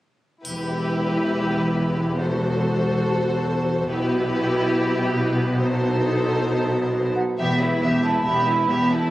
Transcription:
0.45 E1 E2 E4 G4 B4, triangle
2.20 F#4 A4 C5
3.90 B1 B2 E4 G4 B4
5.62 D#4 A4 C5
7.15 F#5
7.38 E1 E2 B3 G4 E5
7.61 E4 B4
7.82 E1 E2 B3 G4 E5
8.03 E4 B4 A5
8.24 E1 E2 B3 G4 E5 B5
8.46 E4 B4
8.68 E1 E2 B3 G4 E5
8.89 E4 B4 A5

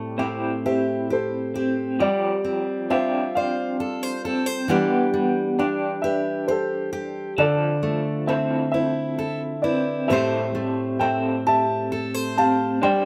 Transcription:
Already playing: A2 G3 A3 C4 G4
0.18 C4 E4 G4
0.66 G4 C5 E5
1.10 G4 A4 C5
1.54 C4 G4
1.99 F3 G3 G4 D5
2.45 C4
2.90 C4 D4 F4 G4 C5 E5
3.35 C5 D5 F5
3.80 A4
4.03 C5
4.25 C4 A4
4.46 C5
4.68 E3 G3 B3 D4 G4
5.14 G3
5.59 D4 G4
6.02 G4 B4 E5
6.48 G4 A4 C5
6.93 G4
7.38 D3 F3 A4 D5
7.83 A3
8.27 C4 E4 A4 C5 E5
8.72 E4 C5 E5
9.19 A4
9.62 C4 E4 B4 D5
10.08 A2 G3 A3 C4 G4 A4 C5 E5
10.13 C5
10.55 A3
10.99 C4 A4 E5 G5
11.47 G4 E5 A5
11.92 A4
12.14 C5
12.36 C4 G4 F5 A5
12.82 G3 D4 C5 D5 G5

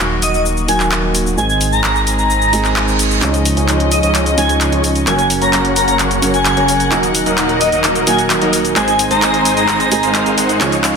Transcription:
Already playing: D#1 D#3 F#3 A#3 F#4
0.22 D#5, open hi-hat, shaker
0.34 D#5, shaker
0.46 shaker
0.57 shaker
0.68 D#3 F#3 A#3 F#4 G#5, open hi-hat, shaker
0.80 clap, shaker
0.92 clap, shaker
1.15 open hi-hat, shaker
1.26 shaker
1.37 G#1 D#3 G#3 C4 G#4 G#5, shaker
1.49 G#5, shaker
1.61 open hi-hat, shaker
1.72 A#5, shaker
1.84 clap, shaker
1.96 shaker
2.07 open hi-hat, shaker
2.18 A#5, shaker
2.30 reverse cymbal, shaker
2.42 shaker
2.52 D#3 G#3 C4 G#4, open hi-hat, shaker
2.65 clap, shaker
2.76 clap, shaker
2.88 shaker
2.99 open hi-hat, shaker
3.11 shaker
3.21 C#2 C#3 F3 G#3 C#4 D#4 F4 G#4 C#5 D#5, clap, closed hi-hat, shaker
3.34 closed hi-hat, shaker
3.45 open hi-hat, shaker
3.57 C#2 F3 C#4 D#4 G#4 C#5, closed hi-hat, shaker
3.69 clap, closed hi-hat, shaker
3.80 closed hi-hat
3.92 D#5, open hi-hat, shaker
4.03 C#2 F3 C#4 D#4 G#4 C#5 D#5, closed hi-hat, shaker
4.15 clap, closed hi-hat, shaker
4.26 closed hi-hat, shaker
4.37 C#2 C#3 F3 G#3 C#4 D#4 G#4 C#5 G#5, open hi-hat, shaker
4.49 closed hi-hat, shaker
4.61 clap, closed hi-hat, shaker
4.72 C#2 F3 C#4 D#4 G#4 C#5, closed hi-hat
4.84 open hi-hat, shaker
4.95 closed hi-hat, shaker
5.06 F#1 C#3 F#3 A#3 C#4 F#4 A#4 C#5 F#5 G#5, clap, closed hi-hat, shaker
5.18 G#5, closed hi-hat, shaker
5.30 open hi-hat, shaker
5.42 F#1 F#3 A#3 C#4 A#4 C#5 A#5, closed hi-hat, shaker
5.53 A#5, clap, closed hi-hat, shaker
5.65 closed hi-hat
5.76 A#5, open hi-hat, shaker
5.88 F#1 F#3 A#3 C#4 A#4 C#5 A#5, closed hi-hat, shaker
5.99 clap, closed hi-hat, shaker
6.11 closed hi-hat, shaker
6.22 F#1 C#3 F#3 A#3 C#4 F#4 A#4 C#5, open hi-hat, shaker
6.34 G#5, closed hi-hat, shaker
6.45 clap, closed hi-hat, shaker
6.57 F#1 F#3 A#3 C#4 A#4 C#5, closed hi-hat
6.68 open hi-hat, shaker
6.80 closed hi-hat, shaker
6.90 D#1 D#3 F#3 A#3 D#4 F#4 A#4 D#5, clap, closed hi-hat, shaker
7.03 closed hi-hat, shaker
7.15 open hi-hat, shaker
7.26 D#1 F#3 A#3 D#4 A#4 D#5, closed hi-hat, shaker
7.38 clap, closed hi-hat, shaker
7.49 closed hi-hat
7.61 D#5, open hi-hat, shaker
7.72 D#1 F#3 A#3 D#4 A#4 D#5, closed hi-hat, shaker
7.84 clap, closed hi-hat, shaker
7.95 closed hi-hat, shaker
8.06 D#1 D#3 F#3 A#3 D#4 F#4 A#4 D#5 G#5, open hi-hat, shaker
8.18 closed hi-hat, shaker
8.30 clap, closed hi-hat, shaker
8.42 D#1 F#3 A#3 D#4 A#4 D#5, closed hi-hat
8.53 open hi-hat, shaker
8.65 closed hi-hat, shaker
8.75 G#1 D#3 G#3 C4 D#4 G#4 C5 D#5 G#5, clap, closed hi-hat, shaker
8.88 G#5, closed hi-hat, shaker
8.99 open hi-hat, shaker
9.11 G#1 G#3 C4 D#4 C5 D#5 A#5, closed hi-hat, shaker
9.22 clap, closed hi-hat, shaker
9.34 closed hi-hat
9.45 open hi-hat, shaker
9.57 G#1 G#3 C4 D#4 C5 D#5 A#5, closed hi-hat, shaker
9.68 clap, closed hi-hat, shaker
9.80 closed hi-hat, shaker
9.91 D#3 G#3 C4 G#4, open hi-hat, shaker
10.03 G#1 G#3 C4 D#4 C5 F5, closed hi-hat, shaker
10.15 clap, closed hi-hat, shaker
10.26 G#1 G#3 C4 D#4 C5 F5, closed hi-hat, shaker
10.38 G#1 G#3 C4 D#4 C5 F#5, open hi-hat, shaker
10.49 closed hi-hat, shaker
10.60 C#2 C#3 F3 G#3 C#4 D#4 G#4 C#5 F5, clap, closed hi-hat, shaker
10.72 closed hi-hat, shaker
10.84 clap, open hi-hat, shaker

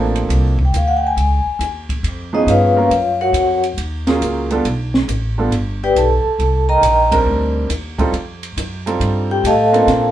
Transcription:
Already playing: A1 F3 A#3 C4 D4 A4
0.16 ride
0.29 C2, ride
0.59 kick
0.65 G5
0.72 D2, hi-hat pedal, ride
0.77 F5
0.88 F#5
0.97 G5
1.07 G#5
1.16 C#2, ride
1.45 muted upright bass stroke
1.59 D#2, hi-hat pedal, ride
1.89 kick, ride
2.03 F2, ride
2.33 F3 B3 C#4 D#4 G#4 D#5
2.46 G2 F4 B4 C#5 F5, hi-hat pedal, ride
2.76 F#3 A#3 C#4 F4 A#4
2.90 F#2, ride
3.21 F#4 A#4 C#5 F#5
3.33 F2, hi-hat pedal, ride
3.64 ride
3.77 D#2, ride
4.07 F#3 A#3 C#4 F4 G#4, snare, ride
4.21 C#2, hi-hat pedal, ride
4.51 G3 B3 D4 F4 A4, ride
4.65 B1, ride
4.94 snare
5.08 A1, hi-hat pedal, ride
5.38 G3 B3 D4 F4 A4
5.51 G1, ride
5.84 G4 B4 D5 G5
5.95 B1 A4 A5, hi-hat pedal, ride
6.24 muted upright bass stroke
6.39 C2, ride
6.69 A#4 D#5 G5 A#5
6.82 A#1, hi-hat pedal, ride
7.11 G3 C4 D4 D#4 A#4, kick, ride
7.26 D2
7.69 D#2, hi-hat pedal, ride
7.98 G3 C4 D#4 F4 A4, kick, ride
8.13 F2, ride
8.43 ride
8.57 F#2, hi-hat pedal, ride
8.86 G3 C4 D#4 F4 A4, ride
9.00 G2, ride
9.31 G4 G5
9.44 A2 A4 D#5 F5 A5, hi-hat pedal, ride
9.72 A#3 C4 D4 F4 A4, ride
9.87 A#2, snare, ride

